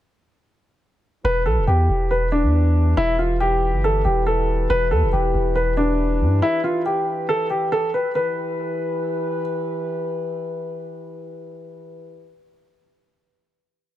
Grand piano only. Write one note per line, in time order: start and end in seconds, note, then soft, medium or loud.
1.25 1.41 B4 loud
1.46 1.63 A4 medium
1.67 2.08 G4 medium
2.11 2.28 B4 medium
2.32 2.93 D4 medium
2.97 3.14 E4 loud
3.19 3.35 F4 medium
3.40 3.81 G4 loud
3.84 4.01 A4 medium
4.05 4.22 G4 medium
4.27 4.67 A4 medium
4.70 4.87 B4 loud
4.91 5.08 A4 medium
5.13 5.53 G4 medium
5.55 5.73 B4 medium
5.77 6.38 D4 medium
6.42 6.59 E4 loud
6.64 6.81 F4 medium
6.86 7.26 G4 medium
7.29 7.46 A4 medium
7.50 7.67 G4 medium
7.72 7.89 A4 medium
7.94 8.11 B4 medium
8.15 9.41 B4 medium